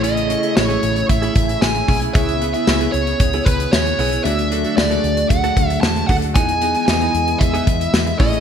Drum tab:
HH |xxxx-xxxxxxx-xox|xxxx-xxxxxxx-xox|xxxx-xxxxxxx-xox|xxxx-xxxxxxx-xox|
TB |----x-------x---|----x-------x---|----x-------x---|----x-------x---|
SD |----o-------o---|----o-------o---|----o-------o---|----o-------o---|
BD |--------o-o---o-|o-------o-o-----|--------o-o---o-|o-------o-o---o-|